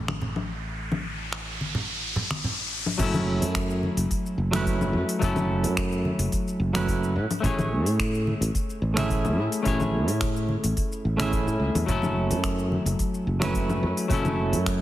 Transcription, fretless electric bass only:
0, 0, Header, 1, 2, 480
1, 0, Start_track
1, 0, Key_signature, 3, "minor"
1, 0, Tempo, 555556
1, 668, Time_signature, 4, 2, 24, 8
1, 12799, End_track
2, 0, Start_track
2, 0, Title_t, "Fretless electric bass"
2, 0, Program_c, 0, 35
2, 0, Note_on_c, 0, 33, 84
2, 2564, Note_off_c, 0, 33, 0
2, 2587, Note_on_c, 0, 30, 90
2, 2943, Note_on_c, 0, 42, 83
2, 2956, Note_off_c, 0, 30, 0
2, 3349, Note_off_c, 0, 42, 0
2, 3430, Note_on_c, 0, 30, 89
2, 3501, Note_off_c, 0, 30, 0
2, 3783, Note_on_c, 0, 30, 80
2, 4260, Note_on_c, 0, 42, 83
2, 4273, Note_off_c, 0, 30, 0
2, 4340, Note_off_c, 0, 42, 0
2, 4510, Note_on_c, 0, 30, 90
2, 4869, Note_on_c, 0, 42, 89
2, 4882, Note_off_c, 0, 30, 0
2, 5272, Note_off_c, 0, 42, 0
2, 5349, Note_on_c, 0, 30, 88
2, 5420, Note_off_c, 0, 30, 0
2, 5700, Note_on_c, 0, 30, 85
2, 6183, Note_on_c, 0, 45, 84
2, 6196, Note_off_c, 0, 30, 0
2, 6262, Note_off_c, 0, 45, 0
2, 6424, Note_on_c, 0, 33, 89
2, 6788, Note_off_c, 0, 33, 0
2, 6788, Note_on_c, 0, 45, 90
2, 7191, Note_off_c, 0, 45, 0
2, 7266, Note_on_c, 0, 33, 90
2, 7339, Note_off_c, 0, 33, 0
2, 7620, Note_on_c, 0, 33, 82
2, 8105, Note_off_c, 0, 33, 0
2, 8105, Note_on_c, 0, 45, 81
2, 8183, Note_off_c, 0, 45, 0
2, 8345, Note_on_c, 0, 33, 92
2, 8714, Note_off_c, 0, 33, 0
2, 8714, Note_on_c, 0, 45, 87
2, 9114, Note_off_c, 0, 45, 0
2, 9194, Note_on_c, 0, 33, 86
2, 9263, Note_off_c, 0, 33, 0
2, 9547, Note_on_c, 0, 33, 83
2, 9906, Note_off_c, 0, 33, 0
2, 9912, Note_on_c, 0, 45, 97
2, 9982, Note_off_c, 0, 45, 0
2, 10019, Note_on_c, 0, 37, 86
2, 10100, Note_off_c, 0, 37, 0
2, 10152, Note_on_c, 0, 40, 101
2, 10222, Note_off_c, 0, 40, 0
2, 10266, Note_on_c, 0, 30, 91
2, 10632, Note_on_c, 0, 42, 83
2, 10645, Note_off_c, 0, 30, 0
2, 11034, Note_off_c, 0, 42, 0
2, 11108, Note_on_c, 0, 30, 87
2, 11180, Note_off_c, 0, 30, 0
2, 11466, Note_on_c, 0, 30, 84
2, 11947, Note_on_c, 0, 42, 84
2, 11960, Note_off_c, 0, 30, 0
2, 12024, Note_off_c, 0, 42, 0
2, 12190, Note_on_c, 0, 30, 94
2, 12550, Note_on_c, 0, 42, 93
2, 12563, Note_off_c, 0, 30, 0
2, 12799, Note_off_c, 0, 42, 0
2, 12799, End_track
0, 0, End_of_file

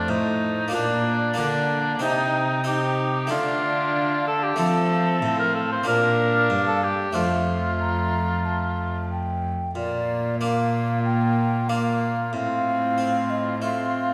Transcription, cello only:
0, 0, Header, 1, 2, 480
1, 0, Start_track
1, 0, Tempo, 644468
1, 1500, Time_signature, 4, 2, 24, 8
1, 10530, End_track
2, 0, Start_track
2, 0, Title_t, "Cello"
2, 0, Program_c, 0, 42
2, 0, Note_on_c, 0, 41, 73
2, 66, Note_on_c, 0, 45, 60
2, 78, Note_off_c, 0, 41, 0
2, 545, Note_on_c, 0, 46, 64
2, 556, Note_off_c, 0, 45, 0
2, 1022, Note_on_c, 0, 50, 57
2, 1033, Note_off_c, 0, 46, 0
2, 1501, Note_off_c, 0, 50, 0
2, 1505, Note_on_c, 0, 48, 69
2, 2459, Note_on_c, 0, 50, 68
2, 2470, Note_off_c, 0, 48, 0
2, 3409, Note_off_c, 0, 50, 0
2, 3414, Note_on_c, 0, 53, 83
2, 3889, Note_on_c, 0, 45, 66
2, 3900, Note_off_c, 0, 53, 0
2, 4361, Note_off_c, 0, 45, 0
2, 4365, Note_on_c, 0, 46, 75
2, 4844, Note_on_c, 0, 43, 63
2, 4855, Note_off_c, 0, 46, 0
2, 5323, Note_off_c, 0, 43, 0
2, 5327, Note_on_c, 0, 41, 76
2, 7085, Note_off_c, 0, 41, 0
2, 7270, Note_on_c, 0, 46, 68
2, 9194, Note_on_c, 0, 45, 67
2, 9205, Note_off_c, 0, 46, 0
2, 10530, Note_off_c, 0, 45, 0
2, 10530, End_track
0, 0, End_of_file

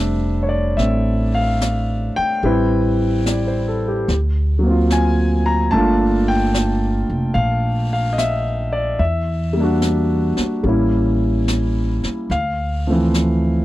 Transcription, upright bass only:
0, 0, Header, 1, 3, 480
1, 0, Start_track
1, 0, Tempo, 821918
1, 1420, Time_signature, 4, 2, 24, 8
1, 5737, Tempo, 828729
1, 7953, End_track
2, 0, Start_track
2, 0, Title_t, "Upright bass"
2, 0, Program_c, 0, 32
2, 0, Note_on_c, 0, 29, 61
2, 435, Note_off_c, 0, 29, 0
2, 454, Note_on_c, 0, 33, 60
2, 1244, Note_off_c, 0, 33, 0
2, 1419, Note_on_c, 0, 33, 62
2, 2354, Note_off_c, 0, 33, 0
2, 2384, Note_on_c, 0, 38, 67
2, 3317, Note_off_c, 0, 38, 0
2, 3340, Note_on_c, 0, 31, 66
2, 4123, Note_off_c, 0, 31, 0
2, 4144, Note_on_c, 0, 29, 56
2, 4284, Note_off_c, 0, 29, 0
2, 4292, Note_on_c, 0, 34, 69
2, 5229, Note_off_c, 0, 34, 0
2, 5252, Note_on_c, 0, 40, 64
2, 6039, Note_off_c, 0, 40, 0
2, 6208, Note_on_c, 0, 33, 57
2, 6998, Note_off_c, 0, 33, 0
2, 7169, Note_on_c, 0, 38, 61
2, 7953, Note_off_c, 0, 38, 0
2, 7953, End_track
3, 0, Start_track
3, 0, Title_t, "Muted upright bass strokes"
3, 1275, Note_on_c, 9, 29, 28
3, 1333, Note_off_c, 9, 29, 0
3, 6062, Note_on_c, 9, 29, 28
3, 6120, Note_off_c, 9, 29, 0
3, 7025, Note_on_c, 9, 29, 26
3, 7083, Note_off_c, 9, 29, 0
3, 7953, End_track
0, 0, End_of_file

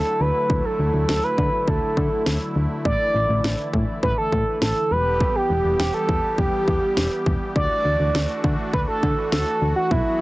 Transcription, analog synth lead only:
0, 0, Header, 1, 2, 480
1, 0, Start_track
1, 0, Tempo, 588235
1, 407, Time_signature, 4, 2, 24, 8
1, 8333, End_track
2, 0, Start_track
2, 0, Title_t, "Analog synth lead"
2, 0, Program_c, 0, 81
2, 0, Note_on_c, 0, 69, 100
2, 168, Note_on_c, 0, 71, 114
2, 181, Note_off_c, 0, 69, 0
2, 530, Note_on_c, 0, 69, 96
2, 542, Note_off_c, 0, 71, 0
2, 883, Note_off_c, 0, 69, 0
2, 888, Note_on_c, 0, 69, 95
2, 1008, Note_on_c, 0, 71, 103
2, 1020, Note_off_c, 0, 69, 0
2, 1368, Note_on_c, 0, 69, 94
2, 1380, Note_off_c, 0, 71, 0
2, 2088, Note_off_c, 0, 69, 0
2, 2326, Note_on_c, 0, 74, 123
2, 3014, Note_off_c, 0, 74, 0
2, 3288, Note_on_c, 0, 71, 107
2, 3399, Note_off_c, 0, 71, 0
2, 3410, Note_on_c, 0, 69, 103
2, 3743, Note_off_c, 0, 69, 0
2, 3771, Note_on_c, 0, 69, 97
2, 4009, Note_on_c, 0, 71, 115
2, 4021, Note_off_c, 0, 69, 0
2, 4369, Note_on_c, 0, 67, 94
2, 4381, Note_off_c, 0, 71, 0
2, 4723, Note_off_c, 0, 67, 0
2, 4728, Note_on_c, 0, 67, 91
2, 4839, Note_off_c, 0, 67, 0
2, 4848, Note_on_c, 0, 69, 95
2, 5208, Note_on_c, 0, 67, 87
2, 5220, Note_off_c, 0, 69, 0
2, 5928, Note_off_c, 0, 67, 0
2, 6166, Note_on_c, 0, 74, 121
2, 6854, Note_off_c, 0, 74, 0
2, 7126, Note_on_c, 0, 71, 109
2, 7180, Note_off_c, 0, 71, 0
2, 7246, Note_on_c, 0, 69, 104
2, 7581, Note_off_c, 0, 69, 0
2, 7605, Note_on_c, 0, 69, 102
2, 7941, Note_off_c, 0, 69, 0
2, 7964, Note_on_c, 0, 66, 90
2, 8084, Note_on_c, 0, 64, 99
2, 8096, Note_off_c, 0, 66, 0
2, 8333, Note_off_c, 0, 64, 0
2, 8333, End_track
0, 0, End_of_file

